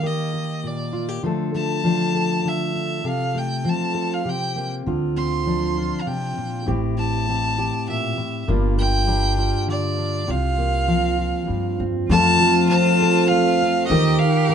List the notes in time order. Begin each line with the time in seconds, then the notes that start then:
Already playing: D#3 D#4
0.03 A#3 G4 D#5
0.34 G4
0.64 A#2 D5
0.93 F4
1.08 G4
1.23 D3 F3 A3 D4 A4
1.54 A3 A5
1.84 F3 D4
2.15 A4
2.45 D3 E5
2.75 D4
3.04 C3 A4
3.08 F5
3.35 A3 G5
3.64 F3 C4
3.69 A5
3.94 A4
4.14 F5
4.25 C3 G4
4.29 G5
4.56 A#3
4.86 D2 D3 F4
5.17 C4 C6
5.46 F3 D4
5.78 F4
6.01 F5
6.06 C3 G5
6.38 A#2
6.66 A1 A2 C4 E4 G4
6.98 E4 A5
7.29 C4 G4
7.58 G4
7.88 A#2 E5
8.17 A2
8.48 G1 G2 G3 A#3 D4 F4
8.77 A#3 G5
9.07 G3 D4
9.38 F4
9.67 D3 D5
9.98 D4
10.27 C2 C3 F4 F5
10.58 A#3
10.88 F3 C4
11.18 F4
11.47 G2
11.80 F2 C4
12.09 F2 F3 A3 C4 F4 A4 A5
12.39 F3 A4
12.69 C4 C5 A5
13.02 A4
13.28 A3 F5
13.62 C4
13.85 F#4 D#5
13.90 D#2 D#3 D#4 G4 A#4
14.18 F5
14.49 A#4